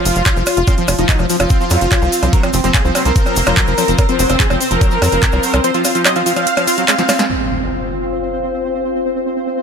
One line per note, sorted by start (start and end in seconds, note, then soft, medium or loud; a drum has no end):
0.00 0.59 F4 loud
0.05 0.12 F1 medium
0.05 0.15 F3 medium
0.05 open hi-hat loud
0.05 cabasa loud
0.15 0.22 F1 medium
0.15 0.23 F3 medium
0.15 closed hi-hat soft
0.15 cabasa soft
0.25 0.33 F4 medium
0.25 kick loud
0.25 clap loud
0.25 closed hi-hat medium
0.25 percussion blips soft
0.25 cabasa medium
0.36 0.43 F1 medium
0.36 0.43 F3 medium
0.36 cabasa soft
0.46 open hi-hat loud
0.46 percussion blips medium
0.46 cabasa medium
0.57 0.64 F1 medium
0.57 0.67 F4 medium
0.57 closed hi-hat soft
0.57 cabasa soft
0.67 0.75 F3 medium
0.67 7.28 C4 medium
0.67 0.82 C4 medium
0.67 0.74 F4 loud
0.67 7.28 C5 medium
0.67 kick loud
0.67 closed hi-hat medium
0.67 percussion blips soft
0.67 cabasa medium
0.78 0.84 F3 medium
0.78 0.88 F3 medium
0.78 closed hi-hat soft
0.78 cabasa soft
0.88 0.95 F1 medium
0.88 0.95 F3 medium
0.88 open hi-hat loud
0.88 percussion blips medium
0.88 cabasa medium
0.98 1.05 F1 medium
0.98 1.05 F3 medium
0.98 1.10 F3 medium
0.98 1.05 D#4 medium
0.98 closed hi-hat medium
0.98 cabasa soft
1.09 1.19 F#3 medium
1.09 1.15 D#4 medium
1.09 1.15 D#4 loud
1.09 kick loud
1.09 clap loud
1.09 closed hi-hat medium
1.09 cabasa soft
1.19 1.26 F1 medium
1.19 1.26 F3 medium
1.19 percussion blips soft
1.19 cabasa soft
1.30 1.36 F3 medium
1.30 1.37 F3 medium
1.30 open hi-hat loud
1.30 cabasa medium
1.39 1.47 F1 medium
1.39 1.50 F3 medium
1.39 2.25 F4 loud
1.39 closed hi-hat medium
1.39 percussion blips medium
1.39 cabasa soft
1.50 1.65 C4 medium
1.50 kick loud
1.50 closed hi-hat medium
1.50 cabasa medium
1.61 1.72 F3 medium
1.61 cabasa soft
1.70 1.78 F2 medium
1.70 1.81 F#3 medium
1.70 open hi-hat loud
1.70 percussion blips soft
1.70 cabasa loud
1.81 1.88 F#1 medium
1.81 1.88 F3 medium
1.81 closed hi-hat soft
1.81 cabasa soft
1.92 1.99 F3 medium
1.92 kick loud
1.92 clap loud
1.92 closed hi-hat medium
1.92 percussion blips medium
1.92 cabasa medium
2.02 2.09 C2 medium
2.02 2.12 F3 medium
2.02 cabasa soft
2.12 open hi-hat medium
2.12 cabasa loud
2.23 2.29 C2 medium
2.23 2.35 F3 medium
2.23 closed hi-hat soft
2.23 percussion blips soft
2.23 cabasa soft
2.33 2.43 F#3 medium
2.33 2.40 A#4 loud
2.33 kick loud
2.33 closed hi-hat medium
2.33 cabasa soft
2.43 2.50 F3 medium
2.43 2.50 C4 medium
2.43 closed hi-hat soft
2.43 percussion blips medium
2.43 cabasa soft
2.53 2.60 F1 loud
2.53 2.61 F3 medium
2.53 2.60 C4 medium
2.53 open hi-hat loud
2.53 cabasa medium
2.64 2.71 F1 medium
2.64 2.74 F3 medium
2.64 2.71 A#3 medium
2.64 2.71 C4 medium
2.64 closed hi-hat medium
2.64 cabasa soft
2.74 2.81 A#3 medium
2.74 2.81 G#4 loud
2.74 kick loud
2.74 clap loud
2.74 closed hi-hat medium
2.74 percussion blips soft
2.74 cabasa soft
2.85 2.91 C2 medium
2.85 2.97 F3 medium
2.85 2.91 C4 medium
2.85 cabasa soft
2.95 3.05 F#3 medium
2.95 3.02 A#3 medium
2.95 3.02 C4 medium
2.95 open hi-hat medium
2.95 percussion blips medium
2.95 cabasa loud
3.05 3.12 C2 medium
3.05 3.12 F3 medium
3.05 3.12 A#3 medium
3.05 3.90 A#4 loud
3.05 closed hi-hat medium
3.05 cabasa soft
3.16 3.23 F3 medium
3.16 kick loud
3.16 closed hi-hat medium
3.16 cabasa soft
3.26 3.36 F3 medium
3.26 percussion blips soft
3.26 cabasa soft
3.36 3.43 F1 medium
3.36 3.43 A#3 medium
3.36 open hi-hat loud
3.36 cabasa loud
3.46 3.53 F1 medium
3.46 3.59 F3 medium
3.46 3.53 A#3 medium
3.46 closed hi-hat medium
3.46 percussion blips medium
3.46 cabasa soft
3.57 3.67 F#3 medium
3.57 kick loud
3.57 clap loud
3.57 closed hi-hat medium
3.57 cabasa soft
3.67 3.74 F1 medium
3.67 3.75 F3 medium
3.67 cabasa soft
3.78 3.85 F3 medium
3.78 open hi-hat medium
3.78 percussion blips soft
3.78 cabasa loud
3.88 3.95 F1 medium
3.88 3.98 F3 medium
3.88 closed hi-hat medium
3.88 cabasa soft
3.98 4.05 A#4 loud
3.98 kick loud
3.98 closed hi-hat medium
3.98 percussion blips medium
3.98 cabasa medium
4.09 4.21 F3 medium
4.09 4.15 C4 medium
4.09 closed hi-hat soft
4.09 cabasa soft
4.19 4.26 F1 loud
4.19 4.29 F#3 medium
4.19 4.26 C4 medium
4.19 open hi-hat loud
4.19 cabasa medium
4.29 4.36 F1 medium
4.29 4.37 F3 medium
4.29 4.36 C4 medium
4.29 closed hi-hat medium
4.29 percussion blips soft
4.29 cabasa soft
4.40 4.47 F3 medium
4.40 4.46 G#4 loud
4.40 kick loud
4.40 clap loud
4.40 closed hi-hat medium
4.40 cabasa soft
4.50 4.57 F1 medium
4.50 4.60 F3 medium
4.50 4.57 C4 medium
4.50 percussion blips medium
4.50 cabasa soft
4.61 4.67 C4 medium
4.61 open hi-hat medium
4.61 cabasa medium
4.71 4.78 F1 medium
4.71 4.83 F3 medium
4.71 5.56 A#4 loud
4.71 closed hi-hat medium
4.71 cabasa soft
4.81 4.91 F#3 medium
4.81 kick loud
4.81 closed hi-hat medium
4.81 percussion blips soft
4.81 cabasa soft
4.91 4.99 F3 medium
4.91 cabasa soft
5.02 5.09 F2 medium
5.02 5.09 F3 medium
5.02 open hi-hat loud
5.02 percussion blips medium
5.02 cabasa medium
5.12 5.19 F#1 medium
5.12 5.22 F3 medium
5.12 closed hi-hat medium
5.12 cabasa soft
5.23 kick loud
5.23 clap loud
5.23 closed hi-hat medium
5.23 cabasa medium
5.32 5.40 C2 medium
5.32 5.45 F3 medium
5.32 percussion blips soft
5.32 cabasa soft
5.43 5.53 F#3 medium
5.43 open hi-hat medium
5.43 cabasa loud
5.54 5.60 C2 medium
5.54 5.61 F3 medium
5.54 closed hi-hat medium
5.54 percussion blips medium
5.54 cabasa soft
5.64 5.71 F3 medium
5.64 5.71 C5 loud
5.64 closed hi-hat medium
5.64 cabasa soft
5.74 5.84 F3 medium
5.74 5.81 F4 medium
5.74 closed hi-hat soft
5.74 cabasa soft
5.84 5.91 F4 medium
5.84 open hi-hat loud
5.84 percussion blips soft
5.84 cabasa loud
5.95 6.07 F3 medium
5.95 6.02 F4 medium
5.95 closed hi-hat medium
5.95 cabasa soft
6.05 6.15 F#3 medium
6.05 6.12 D#5 loud
6.05 clap loud
6.05 closed hi-hat medium
6.05 percussion blips medium
6.05 cabasa soft
6.16 6.23 F3 medium
6.16 6.22 F4 medium
6.16 closed hi-hat soft
6.16 cabasa soft
6.26 6.33 F3 medium
6.26 6.33 F4 medium
6.26 open hi-hat medium
6.26 cabasa medium
6.36 6.46 F3 medium
6.36 7.21 F5 loud
6.36 closed hi-hat medium
6.36 percussion blips soft
6.36 cabasa soft
6.47 closed hi-hat medium
6.47 cabasa soft
6.57 6.67 F3 medium
6.57 closed hi-hat soft
6.57 percussion blips medium
6.57 cabasa soft
6.67 6.77 F4 loud
6.67 open hi-hat loud
6.67 cabasa medium
6.77 6.85 F#3 medium
6.77 closed hi-hat medium
6.77 cabasa soft
6.88 6.95 G#3 medium
6.88 clap loud
6.88 closed hi-hat medium
6.88 percussion blips soft
6.88 cabasa medium
6.98 7.03 F3 loud
6.98 snare medium
6.98 closed hi-hat soft
6.98 cabasa soft
7.09 snare medium
7.09 open hi-hat medium
7.09 percussion blips medium
7.09 cabasa medium
7.19 7.26 G#3 medium
7.19 snare medium
7.19 closed hi-hat medium
7.19 cabasa soft
7.30 9.62 C4 medium
7.30 9.62 F4 medium
7.30 9.62 C5 medium
7.30 impact medium
7.50 9.62 C5 medium
7.60 9.62 F5 medium